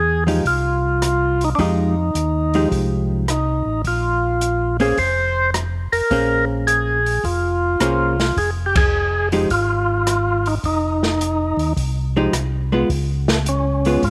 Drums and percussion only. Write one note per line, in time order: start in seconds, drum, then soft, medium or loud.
0.28 open hi-hat soft
0.46 kick soft
0.46 open hi-hat soft
1.02 cross-stick soft
1.02 closed hi-hat soft
1.41 open hi-hat soft
1.59 kick soft
1.59 open hi-hat soft
2.15 closed hi-hat soft
2.54 open hi-hat soft
2.72 kick soft
2.72 open hi-hat soft
3.28 cross-stick soft
3.28 closed hi-hat soft
3.85 kick soft
3.85 open hi-hat soft
4.41 closed hi-hat soft
4.80 open hi-hat soft
4.97 kick soft
4.97 open hi-hat soft
5.54 cross-stick medium
5.54 closed hi-hat soft
5.93 open hi-hat soft
6.11 kick soft
6.11 open hi-hat soft
6.68 closed hi-hat soft
7.06 open hi-hat soft
7.24 kick soft
7.24 open hi-hat soft
7.80 cross-stick medium
7.80 closed hi-hat soft
8.20 snare soft
8.20 open hi-hat soft
8.37 kick soft
8.37 open hi-hat soft
8.76 kick medium
8.76 ride medium
9.32 open hi-hat soft
9.50 kick soft
9.50 open hi-hat soft
10.07 cross-stick medium
10.07 closed hi-hat soft
10.46 open hi-hat soft
10.64 kick soft
10.64 open hi-hat soft
11.03 snare soft
11.21 closed hi-hat soft
11.59 open hi-hat soft
11.77 kick soft
11.77 open hi-hat soft
12.33 cross-stick medium
12.33 closed hi-hat soft
12.90 kick soft
12.90 open hi-hat soft
13.28 snare medium
13.46 closed hi-hat soft
13.85 open hi-hat soft
14.03 kick soft
14.03 open hi-hat soft